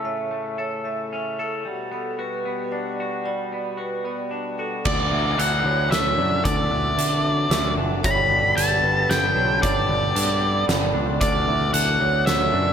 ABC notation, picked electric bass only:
X:1
M:3/4
L:1/8
Q:1/4=113
K:Glyd
V:1 name="Picked electric bass" clef=bass
z6 | z6 | z6 | D,, D,, D,, D,, D,, F,, |
D,, D,, D,2 D,, F,,, | G,,, G,,, G,,, G,,, G,,, B,,, | G,,, G,,, G,,2 G,,, C,, | D,, D,, D,, D,, D,, F,, |]